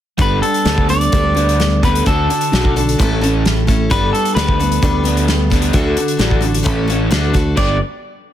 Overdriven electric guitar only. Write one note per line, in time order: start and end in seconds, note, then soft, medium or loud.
0.18 0.40 G3 medium
0.18 0.41 B3 medium
0.18 0.41 D4 medium
0.42 0.63 G3 medium
0.42 0.63 D4 medium
0.66 0.88 G3 medium
0.66 0.88 B3 medium
0.66 0.88 D4 medium
0.89 1.10 G3 medium
0.89 1.10 D4 medium
1.12 1.33 G3 medium
1.12 1.34 D4 medium
1.35 1.57 G3 medium
1.35 1.58 B3 medium
1.35 1.58 D4 medium
1.60 1.80 G3 medium
1.60 1.80 D4 medium
1.82 2.04 G3 medium
1.82 2.05 B3 medium
1.82 2.05 D4 medium
2.05 2.27 D3 medium
2.05 2.28 D4 medium
2.05 2.28 F#4 medium
2.29 2.50 D3 medium
2.29 2.50 D4 medium
2.52 2.74 D3 medium
2.52 2.74 D4 medium
2.52 2.74 F#4 loud
2.76 2.97 D3 medium
2.76 2.97 D4 medium
2.98 3.20 A2 medium
2.98 3.20 A3 medium
2.98 3.21 C#4 medium
3.21 3.43 A2 medium
3.21 3.43 A3 medium
3.21 3.44 C#4 medium
3.46 3.66 A2 medium
3.46 3.66 A3 medium
3.67 3.88 A2 medium
3.67 3.89 A3 medium
3.90 4.12 G3 medium
3.90 4.12 B3 medium
3.90 4.12 D4 medium
4.13 4.34 G3 medium
4.13 4.34 D4 medium
4.36 4.58 G3 medium
4.36 4.59 B3 medium
4.36 4.59 D4 medium
4.61 4.81 G3 medium
4.61 4.81 D4 medium
4.83 5.04 G3 medium
4.83 5.04 D4 medium
5.06 5.28 G3 medium
5.06 5.28 B3 medium
5.06 5.28 D4 medium
5.29 5.50 G3 medium
5.29 5.50 D4 medium
5.51 5.73 G3 medium
5.51 5.74 B3 medium
5.51 5.74 D4 medium
5.75 5.96 D3 medium
5.75 5.97 D4 medium
5.75 5.97 F#4 medium
5.98 6.18 D3 medium
5.98 6.19 D4 medium
6.19 6.41 D3 medium
6.19 6.42 D4 medium
6.19 6.42 F#4 loud
6.43 6.64 D3 medium
6.43 6.64 D4 medium
6.66 6.87 A2 medium
6.66 6.88 A3 medium
6.66 6.88 C#4 medium
6.88 7.10 A2 medium
6.88 7.11 A3 medium
6.88 7.11 C#4 medium
7.11 7.32 D3 medium
7.11 7.33 D4 medium
7.11 7.34 F#4 medium
7.33 7.54 D3 medium
7.33 7.55 D4 medium
7.55 7.75 G2 medium
7.55 7.75 D3 medium
7.55 7.75 G3 medium
7.55 7.76 B3 medium
7.55 7.76 D4 medium
7.55 7.76 G4 loud